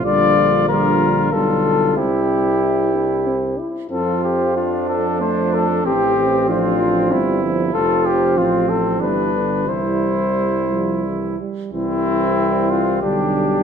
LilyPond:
<<
  \new Staff \with { instrumentName = "Cornet" } { \time 3/4 \key f \major \tempo 4 = 93 d''4 bes'4 a'4 | g'2~ g'8 r8 | a'8 g'8 f'8 a'8 c''8 a'8 | g'4 f'4. r8 |
\key c \major a'8 g'8 f'8 a'8 b'4 | c''2~ c''8 r8 | e'4. f'8 g'4 | }
  \new Staff \with { instrumentName = "Trumpet" } { \time 3/4 \key f \major f'4 f'4 f'4 | e'2~ e'8 r8 | f'4 d'2 | c'2 e'4 |
\key c \major f'4 c'4 d'4 | e'2~ e'8 r8 | c'2 d'4 | }
  \new Staff \with { instrumentName = "French horn" } { \time 3/4 \key f \major g4 g4 g4 | c'4 e'8 d'8 c'8 e'8 | c'2 a4 | c'4 d'4 c'4 |
\key c \major c'2 g4 | g2~ g8 r8 | g2 g4 | }
  \new Staff \with { instrumentName = "Trombone" } { \clef bass \time 3/4 \key f \major d4 d4 d4 | g2~ g8 r8 | f2. | e8 e8 f8 f8 g8 f8 |
\key c \major f2 e8 d8 | e4 g8 f8 e8 g8 | e2 d4 | }
  \new Staff \with { instrumentName = "Bass trombone" } { \clef bass \time 3/4 \key f \major bes,,2 b,,4 | c,2~ c,8 r8 | f,2. | a,,2 g,,4 |
\key c \major f,,4 a,,4 g,,4 | c,2~ c,8 r8 | c,2 b,,4 | }
>>